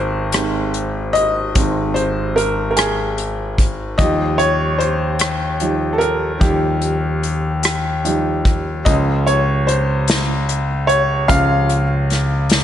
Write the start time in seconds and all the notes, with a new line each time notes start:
Already playing: G#1 D#3 G#3 C4 G#4 A#4 C5
0.32 D#3 G#3 C4, cross-stick, closed hi-hat
0.74 closed hi-hat
1.13 D#5, closed hi-hat
1.55 G#1 D#3 G#3 C4, kick, closed hi-hat
1.94 C5, closed hi-hat
2.36 A#4, closed hi-hat
2.71 A#4
2.77 G#4, cross-stick, closed hi-hat
3.18 closed hi-hat
3.58 kick, closed hi-hat
3.98 D#2 F3 G3 D#4 D#5, kick, closed hi-hat
4.38 C#5, closed hi-hat
4.78 C5, closed hi-hat
5.19 cross-stick, closed hi-hat
5.60 F3 G3 D#4, closed hi-hat
5.93 A4
5.98 A#4, closed hi-hat
6.40 D#2 F3 G3 D#4 G4, kick, closed hi-hat
6.82 closed hi-hat
7.23 closed hi-hat
7.63 cross-stick, closed hi-hat
8.05 F3 G3 D#4, closed hi-hat
8.45 kick, closed hi-hat
8.85 C#2 F3 G#3 C#4 D#5, kick, closed hi-hat
9.27 C#5, closed hi-hat
9.67 C5, closed hi-hat
10.08 snare, closed hi-hat
10.49 closed hi-hat
10.87 C#5, closed hi-hat
11.28 C#2 F3 G#3 C#4 F5, kick, closed hi-hat
11.69 closed hi-hat
12.10 snare, closed hi-hat
12.50 snare, closed hi-hat